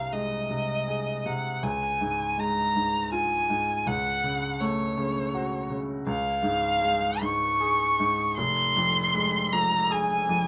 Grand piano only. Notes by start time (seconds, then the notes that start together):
Already playing: C2 C3
0.13 G#3
0.50 C3
0.88 G#4
1.26 C3
1.63 C#2
2.01 G#2
2.38 G#3
2.76 G#2
3.12 F4
3.50 G#2
3.87 C#2
4.24 C#3
4.61 A3
4.98 C#3
5.35 F#4
5.70 C#3
6.07 C#2
6.43 G#2
6.81 G#3
7.22 G#2
7.61 G#4
8.00 G#2
8.38 F1
8.76 F2
9.14 G#3
9.53 F2
9.91 G#4
10.29 F2